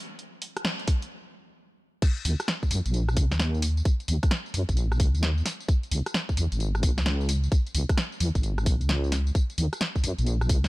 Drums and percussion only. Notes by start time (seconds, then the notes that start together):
0.19 closed hi-hat
0.42 open hi-hat
0.57 cross-stick, closed hi-hat
0.65 snare
0.79 closed hi-hat
0.88 kick, open hi-hat
1.02 closed hi-hat
2.02 kick, closed hi-hat, crash, tambourine
2.17 closed hi-hat, tambourine
2.25 open hi-hat, tambourine
2.40 cross-stick, closed hi-hat, tambourine
2.48 snare, closed hi-hat, tambourine
2.63 kick, tambourine
2.71 open hi-hat, tambourine
2.86 closed hi-hat, tambourine
2.94 closed hi-hat, tambourine
3.09 cross-stick, tambourine
3.17 kick, open hi-hat, tambourine
3.31 snare, closed hi-hat, tambourine
3.40 snare, closed hi-hat, tambourine
3.54 tambourine
3.62 open hi-hat, tambourine
3.77 tambourine
3.85 kick, closed hi-hat, tambourine
4.00 closed hi-hat, tambourine
4.08 open hi-hat, tambourine
4.23 kick, cross-stick, closed hi-hat, tambourine
4.31 snare, closed hi-hat, tambourine
4.46 tambourine
4.54 open hi-hat, tambourine
4.69 kick, closed hi-hat, tambourine
4.77 closed hi-hat, tambourine
4.92 cross-stick, tambourine
5.00 kick, open hi-hat, tambourine
5.15 closed hi-hat, tambourine
5.23 snare, closed hi-hat, tambourine
5.38 tambourine
5.46 snare, open hi-hat, tambourine
5.60 tambourine
5.69 kick, closed hi-hat, tambourine
5.83 closed hi-hat, tambourine
5.91 open hi-hat, tambourine
6.06 cross-stick, closed hi-hat, tambourine
6.14 snare, closed hi-hat, tambourine
6.29 kick, tambourine
6.37 open hi-hat, tambourine
6.52 closed hi-hat, tambourine
6.60 closed hi-hat, tambourine
6.75 cross-stick, tambourine
6.83 kick, open hi-hat, tambourine
6.98 snare, closed hi-hat, tambourine
7.06 snare, closed hi-hat, tambourine
7.21 tambourine
7.29 open hi-hat, tambourine
7.44 tambourine
7.52 kick, closed hi-hat, tambourine
7.67 closed hi-hat, tambourine
7.75 open hi-hat, tambourine
7.89 kick, cross-stick, closed hi-hat, tambourine
7.98 snare, closed hi-hat, tambourine
8.12 tambourine
8.20 open hi-hat, tambourine
8.35 kick, closed hi-hat, tambourine
8.43 closed hi-hat, tambourine
8.58 cross-stick, tambourine
8.66 kick, open hi-hat, tambourine
8.81 closed hi-hat, tambourine
8.89 snare, closed hi-hat, tambourine
9.04 tambourine
9.12 snare, open hi-hat, tambourine
9.27 tambourine
9.35 kick, closed hi-hat, tambourine
9.50 closed hi-hat, tambourine
9.58 open hi-hat, tambourine
9.73 cross-stick, closed hi-hat, tambourine
9.81 snare, closed hi-hat, tambourine
9.96 kick, tambourine
10.04 open hi-hat, tambourine
10.18 closed hi-hat, tambourine
10.26 closed hi-hat, tambourine
10.41 cross-stick, tambourine
10.49 kick, open hi-hat, tambourine
10.64 snare, closed hi-hat, tambourine